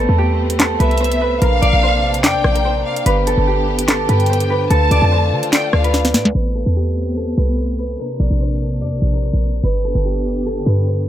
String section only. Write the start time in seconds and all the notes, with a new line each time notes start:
Already playing: A3 B3 C4
1.42 C3 A#3 D4
3.06 D3 B3 G4
4.71 A3 F4
6.35 A3 B3 C4
7.99 C3 A#3 D4
9.64 D3 B3 G4